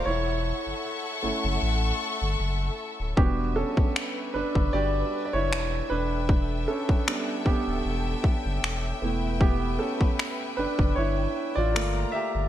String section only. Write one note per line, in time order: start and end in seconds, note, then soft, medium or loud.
0.06 3.14 A4 medium
0.06 3.14 E5 medium
0.06 3.15 F#5 medium
0.06 3.14 C#6 medium
3.17 5.87 B4 medium
3.17 11.70 E5 medium
5.90 8.99 A4 medium
5.90 12.48 G5 medium
9.02 11.72 B4 medium
11.75 12.48 F4 medium
11.75 12.48 A#5 medium